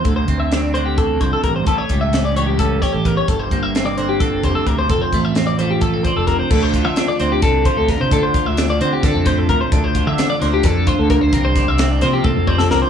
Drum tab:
CC |--------------|--------------|--------------|--------------|
HH |x-x-x-x-x-x-x-|x-x-x-x-x-x-x-|x-x-x-x-x-x-x-|x-x-x-x-x-x-x-|
SD |----o---------|----o-----o---|----o---------|--o-o---------|
T1 |--------------|--------------|--------------|--------------|
BD |o-o-----o-o-o-|o-o-----o-o-o-|o-o-----o-o-o-|o-o-----o-o-o-|

CC |x-------------|--------------|--------------|--------------|
HH |--x-x-x-x-x-x-|x-x-x-x-x-x-x-|x-x-x-x-x-x-x-|x-x-x-x-------|
SD |----o---o---o-|----o---o-o---|----o-o-o-----|--o-o-o----oo-|
T1 |--------------|--------------|--------------|--------o-----|
BD |o-o-----o-o-o-|o-o-----o-o-o-|o-o-----o-o-o-|o-o-----o-o---|